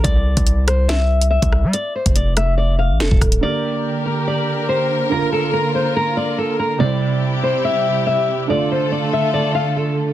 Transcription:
<<
  \new Staff \with { instrumentName = "Nylon-string guitar" } { \time 4/4 \key d \minor \tempo 4 = 142 d''4. c''8 e''4 e''4 | d''8 c''8 d''8 e''8 d''8 f''8 a'8 r8 | d''4. bes'8 d''4 c''4 | bes'8 a'8 bes'8 c''8 bes'8 d''8 a'8 bes'8 |
d''4. c''8 e''4 e''4 | d''8 c''8 d''8 e''8 d''8 f''8 a'8 r8 | }
  \new Staff \with { instrumentName = "String section" } { \time 4/4 \key d \minor << { r1 | r1 | <d bes bes'>1~ | <d bes bes'>1 |
<c g g'>1 | <d a a'>1 | } \\ { r1 | r1 | g'1 | f'1 |
e'1 | f'1 | } >> }
  \new Staff \with { instrumentName = "Felt piano" } { \time 4/4 \key d \minor r1 | r1 | <d bes g' bes'>1 | <d bes f' bes'>1 |
<c g e' c''>1 | <d a f' d''>1 | }
  \new Staff \with { instrumentName = "808-style bass" } { \clef bass \time 4/4 \key d \minor c,8. c,2~ c,8 c,8 g16 | r8. f,,2 a,,16 f,,16 d,,16 d,,8 | r1 | r1 |
r1 | r1 | }
  \new DrumStaff \with { instrumentName = "Drums" } \drummode { \time 4/4 <hh bd>8. <hh bd>16 hh8 <hh ss>8 <hh sn>8. hh16 r16 <hh bd>16 ss8 | hh8. <hh bd>16 hh8 <hh ss>8 r4 sn16 bd16 <hh bd ss>16 hh16 | r4 r4 r4 r4 | r4 r4 r4 r4 |
r4 r4 r4 r4 | r4 r4 r4 r4 | }
>>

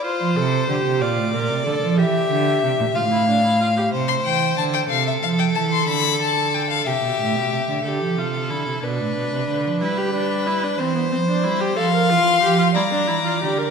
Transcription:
<<
  \new Staff \with { instrumentName = "Violin" } { \time 6/8 \key c \mixolydian \tempo 4. = 61 r2. | r2. | r16 c'''16 g''8 a''16 g''16 f''16 e''16 f''16 g''16 a''16 c'''16 | b''8 a''8 g''16 f''16 e''4. |
r2. | r2. | \key f \major c'''4. bes''4. | }
  \new Staff \with { instrumentName = "Violin" } { \time 6/8 \key c \mixolydian c''4. d''4. | e''4. f''4. | c''4. a'4.~ | a'4. g'4. |
a'4. b'4. | b'4. c''4. | \key f \major f''4. d''4. | }
  \new Staff \with { instrumentName = "Viola" } { \time 6/8 \key c \mixolydian f'8 a'8 g'8 f'8 bes'8 a'8 | g'4. f'16 e'16 d'16 e'16 f'16 g'16 | r2. | r2. |
g'8 f'8 e'8 d'4. | e'16 g'16 d'8 e'16 d'16 c'16 b16 c'16 d'16 e'16 g'16 | \key f \major a'16 bes'16 f'8 g'16 f'16 e'16 d'16 e'16 f'16 g'16 bes'16 | }
  \new Staff \with { instrumentName = "Cello" } { \clef bass \time 6/8 \key c \mixolydian r16 f16 c8 d16 c16 bes,16 a,16 bes,16 c16 d16 f16 | e8 d8 c16 bes,16 a,4. | c8 e8 d8 c8 f8 e8 | d4. c16 b,16 a,16 b,16 c16 d16 |
d16 f16 c8 d16 c16 b,16 a,16 b,16 c16 d16 f16 | g4. e8 f8 g8 | \key f \major f8 e8 f8 g8 e8 d8 | }
>>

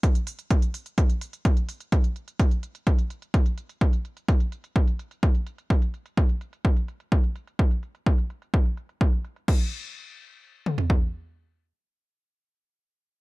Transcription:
\new DrumStaff \with { instrumentName = "Drums" } \drummode { \time 4/4 \tempo 4 = 127 <hh bd>16 hh16 hho16 hh16 <hh bd>16 hh16 hho16 hh16 <hh bd>16 hh16 hho16 hh16 <hh bd>16 hh16 hho16 hh16 | <hh bd>16 hh16 hh16 hh16 <hh bd>16 hh16 hh16 hh16 <hh bd>16 hh16 hh16 hh16 <hh bd>16 hh16 hh16 hh16 | <hh bd>16 hh16 hh16 hh16 <hh bd>16 hh16 hh16 hh16 <hh bd>16 hh16 hh16 hh16 <hh bd>16 hh16 hh16 hh16 | <hh bd>16 hh16 hh16 hh16 <hh bd>16 hh16 hh16 hh16 <hh bd>16 hh16 hh16 hh16 <hh bd>16 hh16 hh16 hh16 |
<hh bd>16 hh16 hh16 hh16 bd16 hh16 hh16 hh16 <hh bd>16 hh16 hh16 hh16 <hh bd>16 hh16 hh16 hh16 | <cymc bd>4 r4 r8 toml16 tomfh16 bd4 | r4 r4 r4 r4 | }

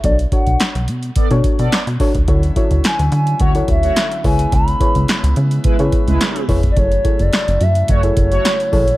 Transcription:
<<
  \new Staff \with { instrumentName = "Soft synth lead" } { \time 4/4 \key b \dorian \tempo 4 = 107 d''8 fis''4 r2 r8 | r4 gis''8 gis''8 fis''8 e''4 gis''8 | b''4. r2 r16. d''32 | cis''8. d''8. e''8 cis''2 | }
  \new Staff \with { instrumentName = "FM electric piano" } { \time 4/4 \key b \dorian <d' fis' a' cis''>16 r16 <d' fis' a' cis''>8. r4 <d' fis' a' cis''>8 r8. <d' fis' a' cis''>16 r16 | <e' fis' a' cis''>16 r16 <e' fis' a' cis''>8. r4 <e' fis' a' cis''>8 r8. <e' gis' b' cis''>8~ | <e' gis' b' cis''>16 r16 <e' gis' b' cis''>8. r4 <e' gis' b' cis''>8 r8. <e' gis' b' cis''>16 r16 | <e' gis' a' cis''>16 r16 <e' gis' a' cis''>8. r4 <e' gis' a' cis''>8 r8. <e' gis' a' cis''>16 r16 | }
  \new Staff \with { instrumentName = "Analog polysynth" } { \time 4/4 \key b \dorian r2 <b a' d''>16 r8 <b a' d''>8 r8. | r2 <a fis' cis''>16 r8 <a fis' cis''>8 r8. | r2 <gis e' b'>16 r8 <gis e' b'>8. r8 | r2 <a fis' cis''>16 r8 <a fis' cis''>8 r8. | }
  \new Staff \with { instrumentName = "Pipe organ" } { \time 4/4 \key b \dorian r1 | e'2.~ e'8 e'8~ | e'1~ | e'1 | }
  \new Staff \with { instrumentName = "Pipe organ" } { \clef bass \time 4/4 \key b \dorian r1 | <d fis cis'>2.~ <d fis cis'>8 <cis gis b>8~ | <cis gis b>1 | <cis fis a>1 | }
  \new Staff \with { instrumentName = "Analog synth bass" } { \clef bass \time 4/4 \key b \dorian b,,8 r16 b,,16 r16 b,,16 b,8 r16 b,16 r16 b,16 r16 b,16 r16 cis,16 | d,8 r16 d,16 r16 d,16 d8 d,8 d,8 r8 cis,8 | cis,8 r16 cis,16 r16 cis,16 cis8 cis16 cis16 r16 cis,16 r8 eis,,8 | fis,,8 r16 fis,,16 r16 fis,,16 fis,8 fis,,8 fis,,8 r8 ais,,8 | }
  \new DrumStaff \with { instrumentName = "Drums" } \drummode { \time 4/4 <hh bd>16 hh16 <hh bd>16 hh16 <hc hh sn>16 hh16 hh16 hh16 <hh bd>16 hh16 <hh bd>16 hh16 <hc hh sn>16 hh16 <hho bd>16 <hh bd>16 | <hh bd>16 hh16 <hh bd>16 hh16 <hc hh sn>16 hh16 hh16 hh16 <hh bd>16 hh16 <hh bd>16 hh16 <hc hh sn>16 hh16 <hho bd>16 hh16 | <hh bd>16 hh16 <hh bd>16 hh16 <hc hh sn>16 hh16 hh16 hh16 <hh bd>16 hh16 <hh bd>16 hh16 <hc hh sn>16 hh16 <hho bd>16 <hh bd>16 | <hh bd>16 hh16 <hh bd>16 hh16 <hc hh sn>16 hh16 hh16 hh16 <hh bd>16 hh16 <hh bd>16 hh16 <hc hh sn>16 hh16 <hho bd>16 hh16 | }
>>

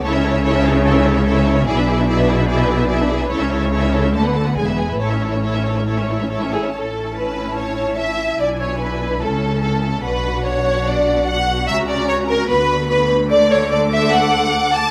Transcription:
<<
  \new Staff \with { instrumentName = "Violin section" } { \time 4/4 \key a \major \tempo 4 = 146 cis''16 e''16 cis''16 e''16 cis''16 e''16 cis''16 e''16 cis''16 e''16 cis''16 e''16 cis''16 e''16 cis''16 e''16 | d''16 e''16 d''16 e''16 d''16 e''16 d''16 e''16 d''16 e''16 d''16 e''16 d''16 e''16 d''16 e''16 | cis''16 e''16 cis''16 e''16 cis''16 e''16 cis''16 e''16 a''16 fis''16 a''16 fis''16 gis''16 e''16 gis''16 e''16 | cis''16 e''16 cis''16 e''16 cis''16 e''16 cis''16 e''16 cis''16 e''16 cis''16 e''16 cis''16 e''16 cis''16 e''16 |
a''1 | gis''2 a''2 | fis''1 | ais''2 b''2 |
\key d \major d'''1 | }
  \new Staff \with { instrumentName = "Violin section" } { \time 4/4 \key a \major << { r1 | r1 | r1 | r2. r8 gis'8 |
a'4 b'4 cis''4 e''4 | d''8 cis''8 b'4 a'4 a'8 a'8 | b'4 cis''4 d''4 fis''4 | e''8 d''8 cis''8 ais'8 b'4 b'8 r8 |
\key d \major d''8 cis''8 d''8 e''8 fis''4. a''8 | } \\ { a'16 cis''16 a'16 cis''16 a'16 cis''16 a'16 cis''16 a'16 cis''16 a'16 cis''16 a'16 cis''16 a'16 cis''16 | gis'16 b'16 gis'16 b'16 gis'16 b'16 gis'16 b'16 gis'16 b'16 gis'16 b'16 gis'16 b'16 gis'16 b'16 | a'16 cis''16 a'16 cis''16 a'16 cis''16 a'16 cis''16 a'16 b'16 a'16 b'16 gis'16 b'16 gis'16 b'16 | a'16 cis''16 a'16 cis''16 a'16 cis''16 a'16 cis''16 a'16 cis''16 a'16 cis''16 a'16 cis''16 a'16 cis''16 |
r1 | r1 | r1 | r1 |
r1 | } >> }
  \new Staff \with { instrumentName = "Viola section" } { \time 4/4 \key a \major << { r1 | r1 | r1 | r1 |
e'1~ | e'1 | fis'1~ | fis'1 |
\key d \major a'1 | } \\ { e'16 cis'16 e'16 cis'16 e'16 cis'16 e'16 cis'16 e'16 cis'16 e'16 cis'16 e'16 cis'16 e'16 cis'16 | e'16 d'16 e'16 d'16 e'16 d'16 e'16 d'16 e'16 d'16 e'16 d'16 e'16 d'16 e'16 d'16 | e'16 cis'16 e'16 cis'16 e'16 cis'16 e'16 cis'16 a16 b16 a16 b16 gis16 b16 gis16 b16 | e'16 cis'16 e'16 cis'16 e'16 cis'16 e'16 cis'16 e'16 cis'16 e'16 cis'16 e'16 cis'16 e'16 cis'16 |
cis'1 | d'2 cis'2 | d'1 | cis'2 b2 |
a1 | } >> }
  \new Staff \with { instrumentName = "Cello section" } { \clef bass \time 4/4 \key a \major cis1 | b,1 | cis2 d4 e,4 | a,2.~ a,8 r8 |
a,1 | b,2 cis2 | b,1 | cis2 d2~ |
\key d \major d1 | }
  \new Staff \with { instrumentName = "Double bass section" } { \clef bass \time 4/4 \key a \major cis,1 | b,,1 | cis,2 d,4 e,,4 | a,,2.~ a,,8 r8 |
a,,1 | b,,2 cis,2 | b,,1 | cis,2 d,2~ |
\key d \major d,1 | }
>>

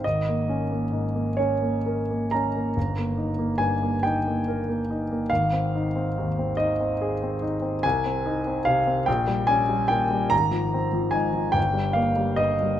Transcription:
<<
  \new Staff \with { instrumentName = "Grand piano" } { \time 6/8 \key aes \major \tempo 4. = 47 ees''4. des''4 bes''8~ | bes''4 aes''8 g''4. | f''4. ees''4 r8 | aes''4 f''8 g''8 aes''8 g''8 |
bes''4 aes''8 g''8 f''8 ees''8 | }
  \new Staff \with { instrumentName = "Grand piano" } { \time 6/8 \key aes \major aes,,16 bes16 des'16 bes16 aes,16 bes16 des'16 bes16 bes'16 bes16 des'16 bes16 | g,,16 bes16 ees'16 bes16 g,16 bes16 ees'16 bes16 bes'16 bes16 ees'16 bes16 | aes,,16 c'16 ees'16 c'16 ees,16 c'16 ees'16 c'16 aes'16 c'16 ees'16 c'16 | c,16 c'16 ees'16 c'16 c16 c'16 bes,,16 g16 des'16 g16 bes,16 g16 |
aes,,16 f16 c'16 f16 aes,16 f16 g,,16 g16 bes16 g16 g,16 g16 | }
>>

